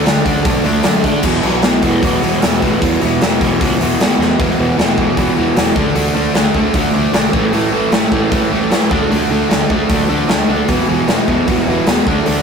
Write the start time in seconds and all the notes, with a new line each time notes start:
0.05 D2 D3 A3 D4, snare, open hi-hat
0.24 D2 D3 A3 D4, kick, open hi-hat
0.45 B1 D3 A3 D4, kick, open hi-hat
0.64 D2 D3 A3 D4, open hi-hat
0.83 F#2 D3 A3 D4, snare, open hi-hat
1.04 D3 A3 D4, kick, open hi-hat
1.23 E1 E2 B2 E3, kick, crash
1.42 B1 E2 B2 E3, open hi-hat
1.62 B1 E2 B2 E3, snare, open hi-hat
1.82 E1 E2 B2 E3, kick, open hi-hat
2.03 E1 E2 B2 E3, kick, open hi-hat
2.22 E1 E2 B2 E3, open hi-hat
2.42 E1 E2 B2 E3, snare, open hi-hat
2.61 A1 E2 B2 E3, kick, open hi-hat
2.80 E1 E2 B2 E3, kick, open hi-hat
3.01 E1 E2 B2 E3, open hi-hat
3.21 E1 E2 B2 E3, snare, open hi-hat
3.41 E1 E2 B2 E3, kick, open hi-hat
3.60 C#2 E2 B2 E3, kick, open hi-hat
3.79 E1 E2 B2 E3, open hi-hat
3.99 G#1 E2 B2 E3, snare, open hi-hat
4.18 E2 B2 E3, snare
4.38 E1 E2 B2 E3, kick, open hi-hat
4.59 E1 E2 B2 E3
4.78 E1 E2 B2 E3, snare, open hi-hat
4.98 E1 E2 B2 E3, kick
5.17 E1 E2 B2 E3, kick, open hi-hat
5.37 E1 E2 B2 E3
5.56 E1 E2 B2 E3, snare, open hi-hat
5.75 D2 D3 A3 D4, kick
5.95 D2 D3 A3 D4, open hi-hat
6.14 D2 D3 A3 D4
6.35 D2 D3 A3 D4, snare, open hi-hat
6.54 D2 D3 A3 D4, kick
6.74 D2 D3 A3 D4, kick, open hi-hat
6.94 D2 D3 A3 D4
7.13 B1 D3 A3 D4, snare, open hi-hat
7.32 A1 A2 E3 A3, kick
7.52 A1 A2 E3 A3, open hi-hat
7.71 A1 A2 E3 A3
7.92 A1 A2 E3 A3, snare, open hi-hat
8.12 A1 A2 E3 A3, kick
8.31 A1 A2 E3 A3, kick, open hi-hat
8.51 A1 A2 E3 A3
8.70 A1 A2 E3 A3, snare, open hi-hat
8.91 D2 D3 A3 D4, kick
9.10 D2 D3 A3 D4, open hi-hat
9.30 D2 D3 A3 D4
9.49 D2 D3 A3 D4, snare, open hi-hat
9.69 D2 D3 A3 D4, kick
9.89 D2 D3 A3 D4, kick, open hi-hat
10.09 D2 D3 A3 D4
10.28 D2 D3 A3 D4, snare, open hi-hat
10.48 D2 D3 A3 D4
10.68 E1 E2 B2 E3, kick, open hi-hat
10.87 E1 E2 B2 E3
11.08 E1 E2 B2 E3, snare, open hi-hat
11.28 E1 E2 B2 E3, kick
11.47 E1 E2 B2 E3, kick, open hi-hat
11.67 E1 E2 B2 E3
11.87 E1 E2 B2 E3, snare, open hi-hat
12.06 D2 D3 A3 D4, kick
12.26 D2 D3 A3 D4, open hi-hat